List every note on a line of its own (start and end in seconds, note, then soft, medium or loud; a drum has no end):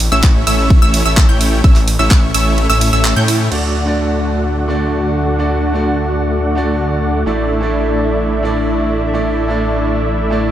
0.00 open hi-hat loud
0.00 ride medium
0.12 0.45 A1 loud
0.12 0.44 A3 medium
0.12 0.44 C#4 medium
0.12 0.44 E4 medium
0.12 0.44 C#5 medium
0.12 0.44 E5 medium
0.12 0.44 E6 medium
0.23 kick loud
0.23 clap loud
0.23 ride medium
0.47 0.80 A1 medium
0.47 0.79 A3 loud
0.47 0.79 C#4 medium
0.47 0.79 E4 medium
0.47 0.79 C#5 medium
0.47 0.79 E5 loud
0.47 0.79 E6 loud
0.47 open hi-hat loud
0.47 ride medium
0.70 kick loud
0.70 ride medium
0.82 1.03 A1 loud
0.82 1.03 A3 medium
0.82 1.03 C#4 medium
0.82 1.03 E4 medium
0.82 1.03 C#5 medium
0.82 1.03 E5 loud
0.82 1.03 E6 loud
0.94 open hi-hat loud
0.94 ride medium
1.06 1.27 A1 loud
1.06 1.26 A3 medium
1.06 1.26 C#4 medium
1.06 1.26 E4 medium
1.06 1.26 C#5 medium
1.06 1.26 E5 medium
1.06 1.26 E6 medium
1.17 kick loud
1.17 clap loud
1.17 ride medium
1.29 1.62 A1 loud
1.29 1.61 A3 medium
1.29 1.61 C#4 medium
1.29 1.61 E4 medium
1.29 1.61 C#5 medium
1.29 1.61 G5 medium
1.29 1.61 G6 medium
1.41 open hi-hat loud
1.41 ride medium
1.64 1.97 A1 loud
1.64 1.80 A3 medium
1.64 1.80 C#4 medium
1.64 1.80 E4 medium
1.64 1.80 C#5 medium
1.64 1.80 E5 medium
1.64 1.80 E6 medium
1.64 kick loud
1.64 ride medium
1.76 clap soft
1.76 open hi-hat medium
1.88 open hi-hat loud
1.88 ride medium
1.99 2.32 A1 loud
1.99 2.32 A3 medium
1.99 2.32 C#4 medium
1.99 2.32 E4 medium
1.99 2.32 C#5 medium
1.99 2.32 E5 medium
1.99 2.32 E6 medium
2.11 kick loud
2.11 clap loud
2.11 ride medium
2.34 2.67 A1 loud
2.34 2.67 A3 loud
2.34 2.67 C#4 medium
2.34 2.67 E4 medium
2.34 2.67 C#5 medium
2.34 2.67 E5 loud
2.34 2.67 E6 loud
2.34 open hi-hat loud
2.34 ride medium
2.58 ride medium
2.70 2.91 A1 loud
2.70 2.91 A3 medium
2.70 2.91 C#4 medium
2.70 2.91 E4 medium
2.70 2.91 C#5 medium
2.70 2.91 E5 loud
2.70 2.91 E6 loud
2.70 open hi-hat medium
2.81 open hi-hat loud
2.81 ride medium
2.93 3.14 A1 loud
2.93 3.14 A3 medium
2.93 3.14 C#4 medium
2.93 3.14 E4 medium
2.93 3.14 C#5 medium
2.93 3.14 E5 medium
2.93 3.14 E6 medium
3.05 clap loud
3.05 ride medium
3.16 3.49 A2 loud
3.16 3.49 A3 medium
3.16 3.49 C#4 medium
3.16 3.49 E4 medium
3.16 3.49 C#5 medium
3.16 3.49 G5 medium
3.16 3.49 G6 medium
3.28 open hi-hat loud
3.28 ride medium
3.51 7.24 D2 medium
3.51 3.84 D3 medium
3.51 7.23 D3 medium
3.51 3.84 A3 medium
3.51 7.24 A3 medium
3.51 10.51 A3 medium
3.51 3.84 D4 medium
3.51 7.24 D4 medium
3.51 7.24 F#4 medium
3.51 7.23 F#4 medium
3.51 3.84 F#4 medium
3.51 7.24 D5 medium
3.51 3.84 D5 medium
3.51 7.24 F#5 medium
3.51 crash medium
3.86 4.65 D3 medium
3.86 4.66 A3 medium
3.86 4.66 D4 medium
3.86 4.66 F#4 medium
3.86 4.67 D5 medium
4.68 5.36 D3 medium
4.68 5.36 A3 medium
4.68 5.36 D4 medium
4.68 5.37 F#4 medium
4.68 5.37 D5 medium
5.39 5.71 D3 medium
5.39 5.71 A3 medium
5.39 5.71 D4 medium
5.39 5.72 F#4 medium
5.39 5.72 D5 medium
5.73 6.53 D3 medium
5.73 6.53 A3 medium
5.73 6.54 D4 medium
5.73 6.54 F#4 medium
5.73 6.54 D5 medium
6.55 7.23 D3 medium
6.55 7.24 A3 medium
6.55 7.24 D4 medium
6.55 7.24 F#4 medium
6.55 7.24 D5 medium
7.26 10.51 A1 medium
7.26 7.59 A2 medium
7.26 7.59 A3 medium
7.26 10.51 A3 medium
7.26 10.51 D4 medium
7.26 7.59 D4 medium
7.26 10.51 D4 medium
7.26 10.51 E4 medium
7.26 7.59 E4 medium
7.26 10.51 D5 medium
7.26 7.59 D5 medium
7.26 10.51 E5 medium
7.61 8.40 A2 medium
7.61 8.41 A3 medium
7.61 8.41 D4 medium
7.61 8.41 E4 medium
7.61 8.42 D5 medium
8.43 9.11 A2 medium
8.43 9.11 A3 medium
8.43 9.11 D4 medium
8.43 9.12 E4 medium
8.43 9.12 D5 medium
9.13 9.46 A2 medium
9.13 9.46 A3 medium
9.13 9.46 D4 medium
9.13 9.47 E4 medium
9.13 9.47 D5 medium
9.48 10.28 A2 medium
9.48 10.28 A3 medium
9.48 10.28 D4 medium
9.48 10.29 E4 medium
9.48 10.29 D5 medium
10.30 10.51 A2 medium
10.30 10.51 A3 medium
10.30 10.51 D4 medium
10.30 10.51 E4 medium
10.30 10.51 D5 medium